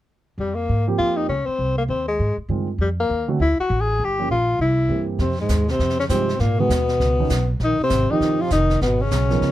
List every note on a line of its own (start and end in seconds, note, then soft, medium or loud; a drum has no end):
0.38 0.67 F2 medium
0.38 0.56 G3 medium
0.55 0.86 A#3 medium
0.69 0.98 G#2 medium
0.87 1.27 F3 soft
0.87 1.26 A#3 medium
0.87 1.27 C4 soft
0.87 1.27 G4 medium
0.98 1.28 F2 medium
0.98 1.18 F4 medium
1.16 1.28 D#4 medium
1.29 1.46 C#2 medium
1.29 1.47 C#4 medium
1.46 1.77 C4 medium
1.46 muted upright bass stroke soft
1.58 1.88 C2 medium
1.78 1.83 A#3 medium
1.88 2.18 D#2 medium
1.88 2.07 C4 medium
2.08 2.36 G#3 medium
2.19 2.37 G#2 medium
2.37 muted upright bass stroke soft
2.49 2.78 G2 medium
2.49 2.66 D#3 soft
2.49 2.66 G#3 soft
2.49 2.66 C4 soft
2.49 2.67 F4 soft
2.78 3.08 F2 medium
2.78 2.89 G3 medium
3.00 3.27 A#3 medium
3.09 3.39 D#2 medium
3.28 3.38 D3 medium
3.28 3.38 A3 soft
3.28 3.38 C4 soft
3.28 3.39 F#4 medium
3.39 3.57 D2 medium
3.39 3.58 E4 medium
3.59 3.82 F#4 medium
3.59 muted upright bass stroke soft
3.70 3.99 A1 medium
3.81 4.06 G#4 medium
3.99 4.29 G1 medium
4.04 4.30 G4 medium
4.18 4.29 F3 soft
4.18 4.29 A#3 soft
4.18 4.29 C#4 soft
4.18 4.29 G4 soft
4.30 4.58 A#1 medium
4.30 4.58 F4 medium
4.59 4.89 C2 medium
4.59 5.06 E4 medium
4.89 5.18 G2 medium
4.89 5.20 E3 soft
4.89 5.20 A#3 soft
4.89 5.20 C4 soft
4.89 5.20 G4 soft
5.19 5.49 F2 medium
5.19 5.37 C3 medium
5.19 5.38 C4 medium
5.19 brush sweep soft
5.19 kick soft
5.19 snare soft
5.40 5.71 G#2 medium
5.40 5.72 G#3 medium
5.49 5.79 D#2 medium
5.49 kick soft
5.49 snare medium
5.49 hi-hat pedal medium
5.68 5.99 C3 medium
5.68 5.99 C4 medium
5.68 snare soft
5.79 6.09 F2 medium
5.79 brush sweep soft
5.79 kick soft
5.79 snare soft
5.89 snare soft
5.99 6.05 C#3 medium
5.99 6.04 C#4 medium
5.99 snare soft
6.09 6.39 G2 medium
6.09 6.41 C3 medium
6.09 6.27 F3 soft
6.09 6.27 G#3 soft
6.09 6.41 C4 medium
6.09 6.27 D#4 soft
6.09 6.27 G4 medium
6.09 kick soft
6.09 snare soft
6.09 hi-hat pedal soft
6.29 snare soft
6.39 6.69 G#2 medium
6.39 6.59 A#2 medium
6.39 6.61 A#3 medium
6.39 brush sweep soft
6.39 kick soft
6.39 snare soft
6.58 7.49 B2 medium
6.58 6.69 D#3 medium
6.58 6.70 G#3 medium
6.58 7.50 B3 medium
6.58 6.70 B3 soft
6.58 6.70 F#4 medium
6.69 6.99 D#2 medium
6.69 kick soft
6.69 snare medium
6.69 hi-hat pedal soft
6.88 snare soft
7.00 7.30 C#2 medium
7.00 brush sweep soft
7.00 kick soft
7.00 snare soft
7.20 7.30 D#3 medium
7.20 7.30 B3 soft
7.20 7.30 C#4 medium
7.20 7.30 D#4 medium
7.29 7.59 B1 medium
7.29 kick soft
7.29 snare soft
7.29 hi-hat pedal soft
7.59 7.78 A#1 medium
7.59 7.79 D#3 medium
7.59 brush sweep soft
7.59 kick soft
7.59 snare soft
7.64 7.80 D#4 medium
7.80 8.13 C3 medium
7.80 8.13 C4 medium
7.80 muted upright bass stroke soft
7.89 8.08 G#1 medium
7.89 kick soft
7.89 snare soft
7.89 hi-hat pedal medium
8.11 8.43 D#3 medium
8.11 8.49 F3 medium
8.11 8.49 C4 soft
8.11 8.42 D#4 medium
8.11 8.50 D#4 medium
8.11 8.50 G4 medium
8.21 8.50 G1 medium
8.21 brush sweep soft
8.21 kick soft
8.21 snare soft
8.41 8.52 F3 medium
8.41 8.52 F4 medium
8.50 8.80 F1 medium
8.50 8.80 D#4 medium
8.50 kick soft
8.50 snare soft
8.50 hi-hat pedal soft
8.54 8.81 D#3 medium
8.70 snare soft
8.81 9.11 G#1 medium
8.81 9.05 B2 medium
8.81 9.03 B3 medium
8.81 brush sweep soft
8.81 kick soft
8.81 snare soft
9.01 9.52 C#3 medium
9.01 9.52 C#4 medium
9.11 9.41 B1 medium
9.11 kick soft
9.11 snare soft
9.11 hi-hat pedal soft
9.30 9.52 F3 medium
9.30 9.52 B3 soft
9.30 9.52 D#4 soft
9.30 9.52 A#4 medium
9.30 snare soft
9.41 9.52 C#2 medium
9.41 brush sweep soft
9.41 kick soft
9.41 snare soft